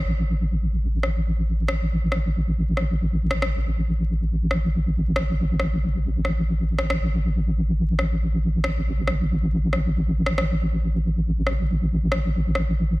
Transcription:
0.05 6.98 A1 medium
1.03 cross-stick soft
1.68 cross-stick medium
2.12 cross-stick medium
2.77 cross-stick soft
3.31 cross-stick medium
3.42 cross-stick medium
4.51 cross-stick soft
5.16 cross-stick medium
5.60 cross-stick medium
6.25 cross-stick soft
6.79 cross-stick medium
6.90 cross-stick medium
7.00 13.00 A1 medium
7.99 cross-stick medium
8.64 cross-stick medium
9.07 cross-stick medium
9.73 cross-stick medium
10.26 cross-stick medium
10.38 cross-stick medium
11.47 cross-stick soft
12.12 cross-stick medium
12.55 cross-stick medium

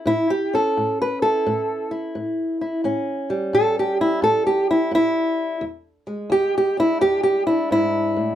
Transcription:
0.00 0.33 C#4 soft
0.00 0.07 E4 soft
0.06 0.70 A2 medium
0.06 0.29 E4 medium
0.30 0.53 G4 medium
0.54 2.82 C#4 soft
0.54 1.00 A4 medium
0.77 1.41 A2 medium
1.02 1.22 B4 medium
1.22 1.91 E4 soft
1.22 1.91 A4 medium
1.46 2.10 A2 medium
1.91 2.61 E4 soft
2.15 2.80 A2 medium
2.61 2.84 E4 soft
2.84 3.49 A2 medium
2.84 5.60 C#4 medium
3.30 5.63 G3 soft
3.53 4.18 A2 medium
3.53 3.77 A4 loud
3.79 4.01 G4 medium
4.01 4.23 E4 medium
4.22 4.87 A2 medium
4.22 4.46 A4 loud
4.47 4.70 G4 medium
4.71 4.93 E4 medium
4.91 5.57 A2 medium
4.91 5.63 E4 loud
5.61 6.27 E2 medium
6.07 8.35 G#3 soft
6.30 6.96 E2 medium
6.30 6.55 G4 loud
6.58 6.79 G4 medium
6.77 7.47 D4 soft
6.77 7.01 E4 medium
7.01 7.66 E2 medium
7.01 7.22 G4 loud
7.23 7.46 G4 medium
7.47 8.35 D4 soft
7.47 7.71 E4 medium
7.71 8.17 G#2 medium
7.71 8.35 E4 loud
8.17 8.35 A2 medium

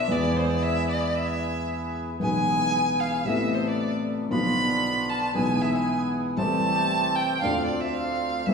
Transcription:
0.00 0.13 E5 medium
0.08 2.10 E2 medium
0.08 2.10 E3 medium
0.08 2.10 G#3 soft
0.08 2.10 B3 medium
0.08 2.11 B3 soft
0.08 2.10 E4 medium
0.08 2.10 G#4 medium
0.08 0.38 D5 medium
0.12 2.12 G#4 medium
0.37 0.52 C5 medium
0.50 0.65 D5 medium
0.63 0.89 E5 medium
0.89 1.17 D5 medium
1.15 1.94 E5 medium
2.19 3.22 B1 medium
2.19 3.22 B2 medium
2.19 3.20 E3 medium
2.19 3.21 G#3 soft
2.19 3.21 B3 medium
2.19 3.22 B3 soft
2.19 3.21 E4 medium
2.19 3.21 G#4 medium
2.19 3.02 G#5 loud
2.24 3.23 G#4 medium
3.00 3.29 F5 medium
3.25 4.26 A1 medium
3.25 4.26 A2 medium
3.25 4.25 C3 medium
3.25 4.26 A3 soft
3.25 4.26 B3 medium
3.25 4.26 B3 soft
3.25 4.26 A4 medium
3.25 3.56 E5 medium
3.29 4.27 E4 medium
3.55 3.69 C5 medium
3.67 3.93 D5 medium
4.29 5.30 B1 medium
4.29 5.30 B2 medium
4.29 5.29 D3 medium
4.29 5.30 F3 medium
4.29 5.30 B3 medium
4.29 5.30 B3 soft
4.29 5.30 D4 medium
4.29 5.30 F4 medium
4.29 5.11 B5 loud
4.33 5.31 F4 medium
5.10 5.35 A5 medium
5.33 6.35 B1 medium
5.33 6.35 B2 medium
5.33 6.34 E3 soft
5.33 6.34 G#3 medium
5.33 6.33 B3 medium
5.33 6.35 B3 medium
5.33 6.33 E4 medium
5.33 6.33 G#4 medium
5.33 6.35 G#4 medium
5.33 5.63 G#5 medium
5.62 5.77 E5 medium
5.75 6.01 G#5 medium
6.36 7.38 C2 medium
6.36 7.38 C3 medium
6.36 7.37 E3 medium
6.36 7.38 A3 medium
6.36 7.38 C4 medium
6.36 7.38 G4 medium
6.36 7.39 G4 medium
6.36 7.17 A5 loud
7.15 7.37 G5 medium
7.37 7.65 F5 medium
7.37 7.42 G5 medium
7.42 8.44 D2 medium
7.42 8.44 D3 medium
7.42 8.44 A3 soft
7.42 8.43 C4 medium
7.42 8.44 C4 soft
7.42 8.43 D4 medium
7.42 8.43 F4 medium
7.46 8.45 F4 medium
7.66 7.82 D5 medium
7.80 7.96 E5 medium
7.94 8.48 F5 medium
8.46 8.54 E2 medium
8.46 8.48 E3 medium
8.46 8.54 E3 medium
8.46 8.54 A3 medium
8.46 8.54 A3 soft
8.46 8.54 C4 medium
8.46 8.54 E4 medium
8.46 8.54 E5 medium
8.51 8.54 A4 medium

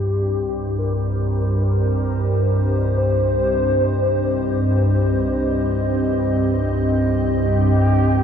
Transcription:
0.00 8.23 C2 medium
0.00 8.23 G2 medium
0.00 8.23 C4 medium
0.00 0.80 G4 loud
0.00 8.23 G4 medium
0.34 8.23 C5 medium
0.78 2.99 A#4 loud
1.92 8.23 D#5 medium
2.97 5.16 C5 loud
7.33 8.23 G4 loud

